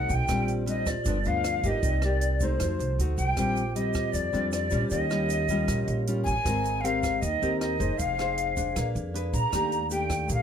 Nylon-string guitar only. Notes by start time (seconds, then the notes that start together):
Already playing: C3 A3 D#4 F#4
0.29 A#2 G3 C4 D4
0.66 G3 C4 D4
1.06 G2 F3 B3 D4
1.26 F3 B3 D4
1.64 A#3 D#4 G4
1.84 C3
2.04 A#3 D#4 G4
2.42 A3 D#4
2.61 F3
3.00 A3 D#4 F#4
3.37 A#2 G3 C4 D4
3.76 G3 C4
4.13 F3
4.33 G3 C4 D4
4.71 G3 C#4 F4
4.92 D#3
5.10 G3 C#4 F4
5.50 G3 C#4 F4
5.70 A#2
6.08 G3 C#4 F4
6.46 G#3 C4 A#4
6.84 C4 G4 A#4
7.22 D#3
7.42 C4 G4 A#4
7.79 D#4 G#4 C5
7.99 F3
8.19 D#4 G#4 C5
8.57 D4 G#4
8.77 A#3
9.14 D4 G#4 B4
9.53 D#3 A3 D4 G4
9.90 A3 D4 G4
10.28 A#2